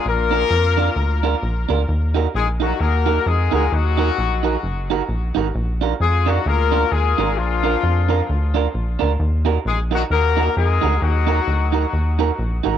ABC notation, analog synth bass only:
X:1
M:4/4
L:1/8
Q:"Swing" 1/4=131
K:Ebm
V:1 name="Analog synth bass" clef=bass
B,,,2 F,,2 =D,,2 B,,, D,, | E,,2 B,,,2 E,,2 F,, =D,, | E,,2 B,,,2 G,,,2 B,,, A,,, | B,,,2 F,,2 =D,,2 E,, A,,, |
B,,,2 F,,2 =D,,2 B,,, D,, | E,,2 B,,,2 E,,2 F,, =D,, | E,,2 =D,,2 E,,2 B,,, A,,, |]